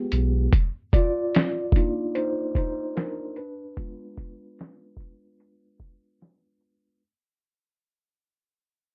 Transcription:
0, 0, Header, 1, 4, 480
1, 0, Start_track
1, 0, Tempo, 810811
1, 311, Time_signature, 4, 2, 24, 8
1, 5297, End_track
2, 0, Start_track
2, 0, Title_t, "Tine electric piano"
2, 0, Program_c, 0, 4
2, 0, Control_c, 0, 64, 127
2, 0, Note_on_c, 0, 59, 56
2, 0, Note_on_c, 0, 67, 66
2, 318, Control_c, 0, 64, 0
2, 319, Note_off_c, 0, 67, 0
2, 320, Note_off_c, 0, 59, 0
2, 431, Control_c, 0, 64, 127
2, 552, Note_on_c, 0, 74, 99
2, 565, Note_on_c, 0, 65, 78
2, 1038, Note_off_c, 0, 65, 0
2, 1038, Note_on_c, 0, 58, 53
2, 1041, Note_on_c, 0, 62, 45
2, 1042, Note_on_c, 0, 63, 48
2, 1046, Note_on_c, 0, 65, 53
2, 1273, Note_on_c, 0, 72, 88
2, 1280, Note_off_c, 0, 63, 0
2, 1287, Note_on_c, 0, 63, 65
2, 1293, Note_off_c, 0, 74, 0
2, 1364, Note_off_c, 0, 58, 0
2, 1366, Note_off_c, 0, 62, 0
2, 1368, Note_off_c, 0, 65, 0
2, 1503, Note_off_c, 0, 63, 0
2, 1507, Note_off_c, 0, 72, 0
2, 1514, Note_on_c, 0, 72, 88
2, 1528, Note_on_c, 0, 63, 72
2, 1743, Note_off_c, 0, 63, 0
2, 1752, Note_on_c, 0, 70, 75
2, 1760, Note_off_c, 0, 72, 0
2, 1765, Note_on_c, 0, 62, 58
2, 1975, Note_off_c, 0, 70, 0
2, 1982, Note_off_c, 0, 62, 0
2, 1994, Note_on_c, 0, 71, 72
2, 1998, Control_c, 0, 64, 0
2, 2006, Note_on_c, 0, 62, 59
2, 2099, Control_c, 0, 64, 127
2, 2238, Note_on_c, 0, 56, 49
2, 2242, Note_on_c, 0, 59, 49
2, 2246, Note_on_c, 0, 65, 54
2, 2931, Note_off_c, 0, 56, 0
2, 2933, Note_off_c, 0, 59, 0
2, 2935, Note_off_c, 0, 65, 0
2, 3649, Note_off_c, 0, 71, 0
2, 3655, Note_off_c, 0, 62, 0
2, 4159, Control_c, 0, 64, 0
2, 5297, End_track
3, 0, Start_track
3, 0, Title_t, "Sub bass"
3, 0, Program_c, 1, 38
3, 75, Note_on_c, 1, 35, 99
3, 290, Note_off_c, 1, 35, 0
3, 5297, End_track
4, 0, Start_track
4, 0, Title_t, "Drums"
4, 70, Note_on_c, 9, 42, 54
4, 129, Note_off_c, 9, 42, 0
4, 311, Note_on_c, 9, 36, 106
4, 315, Note_on_c, 9, 42, 64
4, 370, Note_off_c, 9, 36, 0
4, 374, Note_off_c, 9, 42, 0
4, 551, Note_on_c, 9, 36, 78
4, 555, Note_on_c, 9, 42, 61
4, 610, Note_off_c, 9, 36, 0
4, 614, Note_off_c, 9, 42, 0
4, 797, Note_on_c, 9, 42, 76
4, 807, Note_on_c, 9, 38, 106
4, 856, Note_off_c, 9, 42, 0
4, 866, Note_off_c, 9, 38, 0
4, 1020, Note_on_c, 9, 36, 84
4, 1042, Note_on_c, 9, 42, 66
4, 1079, Note_off_c, 9, 36, 0
4, 1101, Note_off_c, 9, 42, 0
4, 1274, Note_on_c, 9, 42, 77
4, 1333, Note_off_c, 9, 42, 0
4, 1510, Note_on_c, 9, 36, 89
4, 1518, Note_on_c, 9, 42, 76
4, 1569, Note_off_c, 9, 36, 0
4, 1577, Note_off_c, 9, 42, 0
4, 1757, Note_on_c, 9, 42, 77
4, 1761, Note_on_c, 9, 38, 97
4, 1816, Note_off_c, 9, 42, 0
4, 1820, Note_off_c, 9, 38, 0
4, 1990, Note_on_c, 9, 42, 50
4, 2050, Note_off_c, 9, 42, 0
4, 2232, Note_on_c, 9, 36, 95
4, 2235, Note_on_c, 9, 42, 71
4, 2291, Note_off_c, 9, 36, 0
4, 2295, Note_off_c, 9, 42, 0
4, 2472, Note_on_c, 9, 36, 78
4, 2476, Note_on_c, 9, 42, 62
4, 2531, Note_off_c, 9, 36, 0
4, 2536, Note_off_c, 9, 42, 0
4, 2718, Note_on_c, 9, 42, 77
4, 2728, Note_on_c, 9, 38, 109
4, 2777, Note_off_c, 9, 42, 0
4, 2787, Note_off_c, 9, 38, 0
4, 2940, Note_on_c, 9, 36, 80
4, 2962, Note_on_c, 9, 42, 60
4, 3000, Note_off_c, 9, 36, 0
4, 3021, Note_off_c, 9, 42, 0
4, 3197, Note_on_c, 9, 42, 76
4, 3257, Note_off_c, 9, 42, 0
4, 3432, Note_on_c, 9, 36, 85
4, 3442, Note_on_c, 9, 42, 71
4, 3491, Note_off_c, 9, 36, 0
4, 3501, Note_off_c, 9, 42, 0
4, 3680, Note_on_c, 9, 42, 75
4, 3683, Note_on_c, 9, 38, 92
4, 3739, Note_off_c, 9, 42, 0
4, 3743, Note_off_c, 9, 38, 0
4, 3911, Note_on_c, 9, 42, 48
4, 3970, Note_off_c, 9, 42, 0
4, 5297, End_track
0, 0, End_of_file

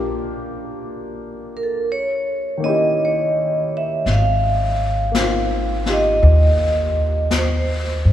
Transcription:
0, 0, Header, 1, 5, 480
1, 0, Start_track
1, 0, Tempo, 1084991
1, 1802, Time_signature, 4, 2, 24, 8
1, 3595, End_track
2, 0, Start_track
2, 0, Title_t, "Vibraphone"
2, 0, Program_c, 0, 11
2, 693, Note_on_c, 0, 70, 50
2, 722, Note_on_c, 0, 69, 36
2, 731, Note_off_c, 0, 69, 0
2, 834, Note_off_c, 0, 70, 0
2, 849, Note_on_c, 0, 73, 64
2, 1145, Note_off_c, 0, 73, 0
2, 1168, Note_on_c, 0, 75, 65
2, 1349, Note_on_c, 0, 73, 51
2, 1629, Note_off_c, 0, 75, 0
2, 1666, Note_off_c, 0, 73, 0
2, 1668, Note_on_c, 0, 76, 59
2, 1819, Note_off_c, 0, 76, 0
2, 1821, Note_on_c, 0, 77, 53
2, 2624, Note_on_c, 0, 75, 57
2, 2634, Note_off_c, 0, 77, 0
2, 3234, Note_off_c, 0, 75, 0
2, 3261, Note_on_c, 0, 72, 58
2, 3595, Note_off_c, 0, 72, 0
2, 3595, End_track
3, 0, Start_track
3, 0, Title_t, "Grand piano"
3, 0, Program_c, 1, 0
3, 0, Control_c, 1, 64, 127
3, 0, Note_on_c, 1, 58, 43
3, 0, Note_on_c, 1, 62, 37
3, 0, Note_on_c, 1, 65, 35
3, 0, Note_on_c, 1, 67, 43
3, 827, Note_off_c, 1, 58, 0
3, 835, Note_off_c, 1, 62, 0
3, 842, Control_c, 1, 64, 0
3, 844, Note_off_c, 1, 65, 0
3, 852, Note_off_c, 1, 67, 0
3, 909, Control_c, 1, 64, 127
3, 1139, Note_on_c, 1, 51, 37
3, 1151, Note_on_c, 1, 58, 36
3, 1163, Note_on_c, 1, 61, 34
3, 1175, Note_on_c, 1, 64, 36
3, 1189, Note_on_c, 1, 67, 43
3, 1793, Note_off_c, 1, 51, 0
3, 1799, Note_off_c, 1, 58, 0
3, 1806, Note_off_c, 1, 61, 0
3, 1808, Control_c, 1, 64, 0
3, 1812, Note_off_c, 1, 64, 0
3, 1818, Note_off_c, 1, 67, 0
3, 1890, Control_c, 1, 64, 127
3, 2263, Note_on_c, 1, 58, 33
3, 2281, Note_on_c, 1, 60, 33
3, 2296, Note_on_c, 1, 63, 29
3, 2309, Note_on_c, 1, 65, 36
3, 2589, Note_off_c, 1, 63, 0
3, 2596, Note_off_c, 1, 65, 0
3, 2596, Note_on_c, 1, 63, 32
3, 2602, Note_on_c, 1, 65, 30
3, 2607, Note_on_c, 1, 67, 36
3, 3595, Note_off_c, 1, 58, 0
3, 3595, Note_off_c, 1, 60, 0
3, 3595, Note_off_c, 1, 63, 0
3, 3595, Note_off_c, 1, 65, 0
3, 3595, Note_off_c, 1, 67, 0
3, 3595, End_track
4, 0, Start_track
4, 0, Title_t, "Upright bass"
4, 0, Program_c, 2, 32
4, 1796, Note_on_c, 2, 32, 60
4, 2741, Note_off_c, 2, 32, 0
4, 2755, Note_on_c, 2, 39, 73
4, 3538, Note_off_c, 2, 39, 0
4, 3562, Note_on_c, 2, 43, 57
4, 3595, Note_off_c, 2, 43, 0
4, 3595, End_track
5, 0, Start_track
5, 0, Title_t, "Drums"
5, 1797, Note_on_c, 9, 25, 34
5, 1797, Note_on_c, 9, 38, 21
5, 1841, Note_off_c, 9, 38, 0
5, 2277, Note_off_c, 9, 25, 0
5, 2277, Note_on_c, 9, 25, 31
5, 2277, Note_on_c, 9, 38, 36
5, 2277, Note_on_c, 9, 44, 43
5, 2321, Note_off_c, 9, 38, 0
5, 2321, Note_off_c, 9, 44, 0
5, 2592, Note_on_c, 9, 38, 25
5, 2636, Note_off_c, 9, 38, 0
5, 2752, Note_off_c, 9, 25, 0
5, 2752, Note_on_c, 9, 25, 31
5, 3233, Note_off_c, 9, 25, 0
5, 3233, Note_on_c, 9, 25, 32
5, 3233, Note_on_c, 9, 38, 35
5, 3233, Note_on_c, 9, 44, 41
5, 3277, Note_off_c, 9, 38, 0
5, 3277, Note_off_c, 9, 44, 0
5, 3595, Note_off_c, 9, 25, 0
5, 3595, End_track
0, 0, End_of_file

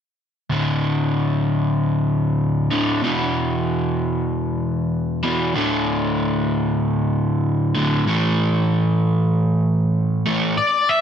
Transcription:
0, 0, Header, 1, 3, 480
1, 0, Start_track
1, 0, Tempo, 629591
1, 388, Time_signature, 4, 2, 24, 8
1, 8395, End_track
2, 0, Start_track
2, 0, Title_t, "Lead electric guitar"
2, 0, Program_c, 0, 29
2, 8062, Note_on_c, 0, 74, 49
2, 8303, Note_on_c, 0, 76, 47
2, 8311, Note_off_c, 0, 74, 0
2, 8395, Note_off_c, 0, 76, 0
2, 8395, End_track
3, 0, Start_track
3, 0, Title_t, "Overdriven electric guitar"
3, 0, Program_c, 1, 29
3, 381, Note_on_c, 1, 38, 42
3, 394, Note_on_c, 1, 45, 41
3, 401, Note_on_c, 1, 50, 44
3, 2052, Note_off_c, 1, 38, 0
3, 2054, Note_off_c, 1, 50, 0
3, 2058, Note_off_c, 1, 45, 0
3, 2063, Note_on_c, 1, 50, 37
3, 2073, Note_on_c, 1, 45, 37
3, 2082, Note_on_c, 1, 38, 34
3, 2292, Note_off_c, 1, 50, 0
3, 2297, Note_off_c, 1, 45, 0
3, 2302, Note_off_c, 1, 38, 0
3, 2305, Note_on_c, 1, 40, 41
3, 2315, Note_on_c, 1, 47, 43
3, 2325, Note_on_c, 1, 52, 46
3, 3974, Note_off_c, 1, 40, 0
3, 3977, Note_off_c, 1, 52, 0
3, 3979, Note_off_c, 1, 47, 0
3, 3986, Note_on_c, 1, 52, 43
3, 3995, Note_on_c, 1, 47, 39
3, 4003, Note_on_c, 1, 40, 31
3, 4214, Note_off_c, 1, 52, 0
3, 4218, Note_off_c, 1, 47, 0
3, 4222, Note_off_c, 1, 40, 0
3, 4226, Note_on_c, 1, 38, 49
3, 4235, Note_on_c, 1, 45, 45
3, 4244, Note_on_c, 1, 50, 47
3, 5893, Note_off_c, 1, 38, 0
3, 5897, Note_off_c, 1, 45, 0
3, 5898, Note_off_c, 1, 50, 0
3, 5907, Note_on_c, 1, 50, 42
3, 5916, Note_on_c, 1, 45, 41
3, 5922, Note_on_c, 1, 38, 37
3, 6134, Note_off_c, 1, 50, 0
3, 6136, Note_off_c, 1, 45, 0
3, 6141, Note_off_c, 1, 38, 0
3, 6146, Note_on_c, 1, 45, 42
3, 6156, Note_on_c, 1, 52, 50
3, 6164, Note_on_c, 1, 57, 45
3, 7811, Note_off_c, 1, 45, 0
3, 7812, Note_off_c, 1, 57, 0
3, 7816, Note_off_c, 1, 52, 0
3, 7821, Note_on_c, 1, 57, 41
3, 7829, Note_on_c, 1, 52, 40
3, 7838, Note_on_c, 1, 45, 36
3, 8049, Note_off_c, 1, 57, 0
3, 8053, Note_off_c, 1, 52, 0
3, 8058, Note_off_c, 1, 45, 0
3, 8395, End_track
0, 0, End_of_file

